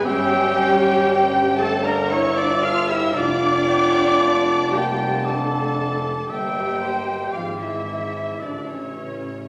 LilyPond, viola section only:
\new Staff \with { instrumentName = "Viola section" } { \time 3/4 \key d \minor \tempo 4 = 58 g'4. a'16 bes'16 cis''16 d''16 f''16 e''16 | d''4. g'8 a'4 | g'4 f'16 e'8. d'16 cis'8. | }